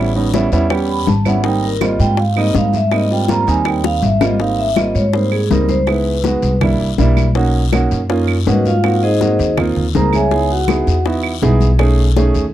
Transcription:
Already playing: A1 B3 C#4 E4
0.15 G3 B3 C#4 D#4, high conga
0.34 G3 B3 C#4 E4, high bongo, high conga, short guiro
0.52 E2 G3 B3 C#4 E4, high bongo, high conga, short guiro
0.70 G3 B3 C#4 G4, high bongo, high conga, long guiro, claves
0.89 B5, high bongo, high conga
1.07 G#1 A5, high bongo, low bongo, high conga, short guiro
1.25 G3 B3 C#4 E4 F#5, high bongo, high conga, short guiro, claves
1.44 G3 A#3 C4 D#4 G5, high bongo, long guiro
1.63 A#4, high conga
1.81 G3 A#3 C4 F4 D#5, high bongo, high conga, short guiro, claves
1.99 G#2 G5, high bongo, short guiro
2.17 F5, high bongo, high conga, long guiro
2.36 G3 A#3 C4 D#4 D#5, high bongo, high conga, claves
2.55 G#2 F5, high bongo, low bongo, high conga, short guiro
2.73 E5, high bongo, high conga, short guiro
2.91 G3 A#3 C4 D#4 D#5, high bongo, high conga, long guiro, claves
3.11 G3 A#3 C4 F4 G5, high conga
3.28 G3 A#3 C4 F4 A#5, high bongo, high conga, short guiro
3.47 D#2 G3 A#3 C4 D#4 G#5, high bongo, high conga, short guiro
3.65 G3 A#3 C4 D#4 G5, high bongo, high conga, long guiro, claves
3.84 F5, high bongo
4.03 G#1 E5, high conga, short guiro
4.21 G3 A#3 C4 F4 D#5, low bongo, high conga, short guiro, claves
4.40 G3 A#3 C4 D#4 F5, high bongo, long guiro
4.58 E5, high conga
4.76 G3 A#3 C4 F4 D#5, high bongo, high conga, short guiro, claves
4.95 G#2 C#5, high bongo, high conga, short guiro
5.13 G3 A#3 C4 D#4 C5, high bongo, high conga, long guiro
5.32 G#4, high bongo, high conga, claves
5.50 C#2 G3 A#3 C4 D#4 A#4, high bongo, low bongo, high conga, short guiro
5.69 C5, high bongo, high conga, short guiro
5.87 G#3 B3 D#4 E4 B4, high bongo, high conga, long guiro, claves
6.06 high conga
6.24 G#3 B3 D#4 F#4, high bongo, high conga, short guiro
6.42 C2, high bongo, high conga, short guiro
6.61 G3 A#3 D4 E4, high bongo, high conga, low conga, long guiro, claves
6.80 C2, high bongo, high conga
6.98 B1 G3 A#3 D4 E4, high bongo, low bongo, high conga, short guiro
7.17 high bongo, high conga, short guiro, claves
7.35 A#3 C#4 D#4 F#4, high bongo, high conga, long guiro
7.72 A#3 C#4 D#4 F#4, high bongo, high conga, short guiro, claves
7.91 F#2, high bongo, high conga, short guiro
8.09 A#3 C#4 D#4 F4, high bongo, high conga, long guiro
8.28 high bongo, high conga, claves
8.46 G#2 A#3 C#4 D#4 F#4 B4 D#5 F#5, high bongo, low bongo, high conga, short guiro
8.65 F4 F5, high bongo, high conga, short guiro
8.84 A#3 C4 D#4 F#4, high bongo, high conga, long guiro, claves
9.02 D#4 G#4 C5 D#5, high conga
9.21 A#3 C4 D#4 F#4, high bongo, high conga, short guiro
9.39 D#2, high bongo, high conga, short guiro
9.57 A#3 C4 D#4 F4, high bongo, high conga, low conga, long guiro, claves
9.76 D#2, high bongo, high conga, low conga
9.95 C#2 A#3 C4 D#4 G#4 A#4 A#5, high bongo, low bongo, high conga, short guiro
10.13 G#4 C#5 E5 G#5, high bongo, high conga, short guiro, claves
10.31 B3 D#4 E4 G#4, high bongo, high conga, long guiro
10.50 F#4 F#5, high conga
10.68 B3 D#4 E4 G#4, high bongo, high conga, short guiro, claves
10.87 E2, high bongo, high conga, short guiro
11.05 B3 D#4 E4 F#4, high bongo, high conga, long guiro
11.23 high bongo, high conga, claves
11.42 B1 B3 D#4 E4 G#4, high bongo, low bongo, high conga, short guiro
11.60 high bongo, high conga, short guiro
11.79 A3 C#4 D#4 G#4, high bongo, long guiro, claves
11.98 high conga
12.16 A3 C#4 D#4 G#4, high bongo, high conga, short guiro
12.35 D#2, high bongo, high conga, short guiro

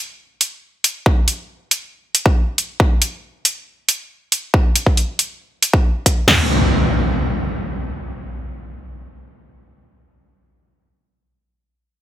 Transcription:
0.41 closed hi-hat
0.84 closed hi-hat
1.06 kick
1.28 closed hi-hat
1.71 closed hi-hat
2.15 closed hi-hat
2.26 kick
2.58 closed hi-hat
2.80 kick
3.02 closed hi-hat
3.45 closed hi-hat
3.89 closed hi-hat
4.32 closed hi-hat
4.54 kick
4.76 closed hi-hat
4.86 kick
4.97 closed hi-hat
5.19 closed hi-hat
5.63 closed hi-hat
5.73 kick
6.06 kick, closed hi-hat
6.28 snare, floor tom, crash, impact

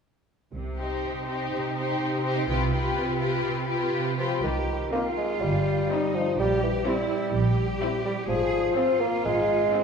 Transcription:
0.53 C2 C3
0.78 D#4 G4 C5
1.03 C3
1.27 D#4 G4 C5
1.52 C3
1.76 D#4 G4 C5
2.00 C3
2.24 D#4 G4 C5
2.47 C2 C3 F4 G4 B4
2.71 F4 G4 B4
2.96 C3
3.19 F4 G4 B4
3.43 C3
3.67 F4 G4 B4
3.92 C3
4.18 F3 F4 G4 B4
4.43 C2 D#3 G4
4.92 A#3 C4 D#4 F4 C5
5.17 G#3
5.42 G1 G3
5.89 C4 D#4 C5
6.15 F3
6.38 A#1 G3 G4
6.63 E3
6.86 G3 C4 E4 C5
7.34 A#1 G4
7.82 C4 E4 C5
8.05 G3
8.28 G#1 F3 G#4
8.76 C4 F4 C5
9.00 A#3
9.25 G#1 G#3
9.74 C4 F4 C5

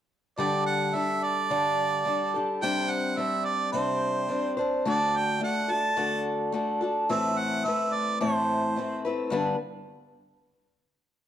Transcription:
0.38 G2 D3 G3 D4 G4 A4 D5
0.66 F#5
0.93 G3 D4 G4 A4 E5
1.23 D5
1.50 G2 D3 G3 D4 G4 A4
2.05 G3 D4 G4 A4
2.34 G3 D4 G4 A4
2.62 C3 G3 C4 D4 C5 G5
2.91 F#5
3.17 G3 C4 D4 C5 E5
3.45 D5
3.72 C3 G3 C4 D4 C5
4.28 G3 C4 D4 C5
4.57 C4 D4 C5
4.85 D3 A3 D4 F#4 A4 D5
5.17 G5
5.40 A3 D4 F#4 A4 F#5
5.68 D4 F#4 A4 A5
5.97 D3 A3 D4 F#4 A4
6.52 A3 D4 F#4 A4
6.81 D4 F#4 A4
7.09 A2 E3 A3 C4 E4 B4 E5
7.38 F#5
7.65 A3 C4 E4 B4 E5
7.93 D5
8.20 A2 E3 A3 C4 E4 C5
8.76 A3 C4 E4 B4
9.05 A3 C4 E4 B4
9.30 G2 D3 G3 B3 D4 B4

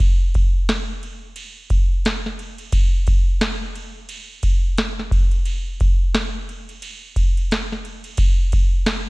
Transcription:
0.00 kick, ride
0.34 kick, ride
0.69 snare, hi-hat pedal, ride
1.03 ride
1.36 ride
1.70 kick, ride
2.05 snare, hi-hat pedal, ride
2.26 snare
2.39 ride
2.58 ride
2.72 kick, ride
3.07 kick, ride
3.41 snare, hi-hat pedal, ride
3.75 ride
4.09 ride
4.43 kick, ride
4.78 snare, hi-hat pedal, ride
4.99 snare
5.11 kick, ride
5.31 ride
5.45 ride
5.80 kick, ride
6.14 snare, hi-hat pedal, ride
6.49 ride
6.69 ride
6.82 ride
7.16 kick, ride
7.37 ride
7.51 snare, hi-hat pedal, ride
7.72 snare
7.85 ride
8.04 ride
8.17 kick, ride
8.52 kick, ride
8.86 snare, hi-hat pedal, ride

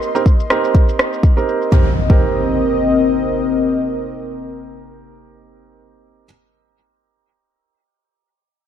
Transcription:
Already playing: C4 D#4 G4 A#4 D#5 C6
0.02 shaker
0.15 C4 D#4 G4 A#4, shaker
0.26 kick, shaker
0.40 shaker
0.50 C4 D#4 G4 A#4, cross-stick, shaker
0.64 shaker
0.75 kick, shaker
0.89 shaker
0.99 cross-stick, shaker
1.13 shaker
1.23 kick, shaker
1.37 C4 D#4 G4 A#4, shaker
1.49 shaker
1.62 shaker
1.72 C4 D#4 G4 A#4 D#5, kick, impact
2.10 C4 D#4 G4 A#4, kick

